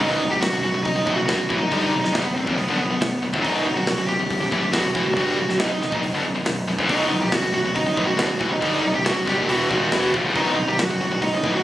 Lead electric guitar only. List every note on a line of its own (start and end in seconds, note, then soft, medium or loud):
0.00 0.31 D#4 medium
0.31 0.41 G4 medium
0.41 0.61 F#4 medium
0.62 0.83 F#4 medium
0.83 1.14 D#4 medium
1.14 1.57 F#4 medium
1.58 1.99 D#4 medium
2.00 2.12 D#4 medium
2.13 2.34 B3 medium
2.34 2.55 C4 medium
2.55 2.76 B3 medium
2.77 3.19 B3 medium
3.42 3.75 D#4 medium
3.75 3.84 F#4 medium
3.85 4.07 F#4 medium
4.07 4.72 G4 medium
4.72 5.13 F#4 medium
5.16 5.57 F#4 medium
5.60 6.00 D#4 medium
6.90 7.21 D#4 medium
7.22 7.33 G4 loud
7.34 7.52 F#4 loud
7.54 7.75 F#4 medium
7.75 8.06 D#4 medium
8.07 8.51 F#4 medium
8.51 8.92 D#4 medium
8.95 9.05 G4 medium
9.06 9.26 F#4 loud
9.28 9.48 G4 loud
9.48 9.69 F#4 medium
9.71 10.11 F#4 medium
10.36 10.68 D#4 medium
10.69 10.79 G4 medium
10.80 11.00 F#4 medium
11.01 11.21 F#4 medium
11.22 11.54 D#4 medium
11.55 11.63 F#4 medium